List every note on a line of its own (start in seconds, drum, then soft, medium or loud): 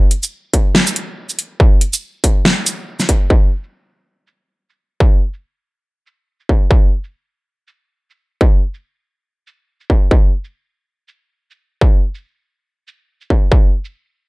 0.11 closed hi-hat medium
0.23 closed hi-hat soft
0.23 shaker medium
0.54 kick medium
0.54 closed hi-hat medium
0.75 snare loud
0.87 shaker medium
0.96 closed hi-hat medium
1.29 shaker medium
1.39 closed hi-hat medium
1.60 kick loud
1.81 closed hi-hat medium
1.93 closed hi-hat soft
1.93 shaker medium
2.24 kick medium
2.24 closed hi-hat medium
2.45 snare loud
2.66 closed hi-hat medium
2.66 shaker medium
3.00 snare soft
3.00 shaker medium
3.09 kick medium
3.09 closed hi-hat medium
3.30 kick loud
3.63 shaker medium
4.27 shaker medium
4.70 shaker soft
5.00 kick loud
5.34 shaker medium
6.07 shaker medium
6.40 shaker soft
6.49 kick medium
6.71 kick loud
7.04 shaker medium
7.68 shaker medium
8.10 shaker soft
8.41 kick loud
8.74 shaker medium
9.47 shaker medium
9.80 shaker soft
9.90 kick medium
10.11 kick loud
10.44 shaker medium
11.08 shaker medium
11.51 shaker soft
11.81 kick loud
12.15 shaker medium
12.88 shaker medium
13.21 shaker medium
13.30 kick medium
13.52 kick loud
13.85 shaker medium